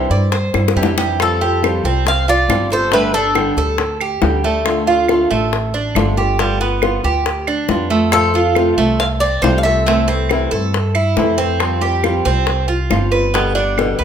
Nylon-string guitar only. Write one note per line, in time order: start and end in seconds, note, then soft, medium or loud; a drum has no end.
0.10 0.32 G3 soft
0.10 0.32 D4 soft
0.10 0.31 E4 soft
0.32 muted nylon-string guitar stroke medium
0.53 0.75 G3 soft
0.53 0.75 D4 soft
0.53 0.74 E4 soft
0.76 1.18 C3 medium
0.76 1.18 E3 medium
0.76 1.19 G3 medium
0.76 1.19 D4 medium
0.76 1.19 E4 medium
1.20 1.40 F3 medium
1.20 1.40 G3 medium
1.20 1.40 C4 medium
1.20 1.40 F4 medium
1.41 1.62 G3 soft
1.41 1.62 C4 soft
1.41 1.62 F4 soft
1.62 1.83 F3 medium
1.62 1.83 G3 medium
1.62 1.84 C4 medium
1.62 1.83 F4 medium
1.84 2.04 G3 soft
1.84 2.04 C4 soft
1.84 2.05 F4 soft
2.05 muted nylon-string guitar stroke medium
2.48 2.69 F3 medium
2.48 2.70 G3 medium
2.48 2.70 C4 medium
2.48 2.69 F4 medium
2.70 2.92 G3 soft
2.70 2.92 C4 soft
2.70 2.91 F4 soft
2.92 3.13 D3 medium
2.92 3.13 G3 medium
2.92 3.13 D4 medium
2.92 3.12 G4 medium
3.13 3.35 G3 soft
3.13 3.35 D4 medium
3.13 3.34 G4 medium
3.35 3.56 D3 medium
3.35 3.56 G3 medium
3.35 3.57 D4 medium
3.35 3.56 G4 medium
3.57 3.77 G3 soft
3.57 3.78 D4 soft
3.57 3.78 G4 soft
3.78 muted nylon-string guitar stroke medium
4.21 4.43 D3 medium
4.21 4.43 G3 medium
4.21 4.43 D4 medium
4.21 4.43 G4 medium
4.44 4.65 G3 soft
4.44 4.65 D4 soft
4.44 4.65 G4 medium
4.65 4.86 D3 medium
4.65 4.86 A3 medium
4.65 4.87 D4 medium
4.65 4.86 F4 medium
4.87 5.08 A3 soft
4.87 5.08 D4 soft
4.87 5.08 F4 medium
5.08 5.29 D3 medium
5.08 5.30 A3 medium
5.08 5.30 D4 medium
5.08 5.29 F4 medium
5.30 5.52 A3 soft
5.30 5.52 D4 soft
5.30 5.51 F4 soft
5.52 muted nylon-string guitar stroke medium
5.95 6.16 D3 medium
5.95 6.16 A3 medium
5.95 6.17 D4 medium
5.95 6.16 F4 medium
6.17 6.38 A3 soft
6.17 6.38 D4 soft
6.17 6.38 F4 soft
6.39 6.60 G3 medium
6.39 6.60 B3 medium
6.39 6.59 F4 medium
6.60 6.82 B3 soft
6.60 6.81 F4 medium
6.82 7.03 G3 medium
6.82 7.04 B3 medium
6.82 7.02 F4 medium
7.03 7.25 B3 soft
7.03 7.25 F4 soft
7.25 muted nylon-string guitar stroke medium
7.69 7.90 G3 medium
7.69 7.90 B3 medium
7.69 7.89 F4 medium
7.90 8.13 B3 soft
7.90 8.11 F4 soft
8.12 8.33 C3 medium
8.12 8.34 F3 medium
8.12 8.34 A3 medium
8.12 8.34 C4 medium
8.12 8.33 F4 medium
8.34 8.55 A3 soft
8.34 8.56 C4 medium
8.34 8.55 F4 medium
8.55 8.77 C3 medium
8.55 8.77 F3 medium
8.55 8.77 A3 medium
8.55 8.77 C4 medium
8.55 8.76 F4 medium
8.78 8.99 A3 soft
8.78 8.99 C4 soft
8.78 8.98 F4 soft
8.99 muted nylon-string guitar stroke medium
9.42 9.64 C3 medium
9.42 9.64 F3 medium
9.42 9.64 A3 medium
9.42 9.64 C4 medium
9.42 9.64 F4 medium
9.65 9.86 A3 soft
9.65 9.86 C4 soft
9.65 9.86 F4 medium
9.86 10.07 C3 medium
9.86 10.07 E3 medium
9.86 10.08 A3 medium
9.86 10.08 C4 medium
9.86 10.07 E4 medium
10.08 10.30 A3 soft
10.08 10.30 C4 soft
10.08 10.29 E4 medium
10.30 10.51 C3 medium
10.30 10.51 E3 medium
10.30 10.51 A3 medium
10.30 10.51 C4 medium
10.30 10.51 E4 medium
10.52 10.73 A3 soft
10.52 10.73 C4 soft
10.52 10.73 E4 soft
10.74 muted nylon-string guitar stroke medium
11.17 11.37 C3 medium
11.17 11.38 E3 medium
11.17 11.38 A3 medium
11.17 11.38 C4 medium
11.17 11.37 E4 medium
11.38 11.60 A3 soft
11.38 11.60 C4 soft
11.38 11.59 E4 medium
11.60 11.81 F3 medium
11.60 11.81 G3 medium
11.60 11.81 C4 medium
11.60 11.79 F4 medium
11.81 12.03 G3 soft
11.81 12.03 C4 medium
11.81 12.02 F4 medium
12.03 12.24 F3 medium
12.03 12.25 G3 medium
12.03 12.25 C4 medium
12.03 12.25 F4 medium
12.26 12.47 G3 soft
12.26 12.47 C4 soft
12.26 12.46 F4 soft
12.48 muted nylon-string guitar stroke medium
12.90 13.11 F3 medium
12.90 13.12 G3 medium
12.90 13.12 C4 medium
12.90 13.11 F4 medium
13.12 13.33 G3 soft
13.12 13.34 C4 soft
13.12 13.33 F4 medium
13.33 13.54 B2 medium
13.33 13.55 D3 medium
13.33 13.55 G3 medium
13.33 13.55 B3 medium
13.33 13.54 G4 medium
13.55 13.77 G3 soft
13.55 13.77 B3 medium
13.55 13.76 G4 medium
13.77 13.98 B2 medium
13.77 13.98 D3 medium
13.77 13.98 G3 medium
13.77 13.99 B3 medium
13.77 13.98 G4 medium
13.99 14.04 B3 soft
13.99 14.04 G4 soft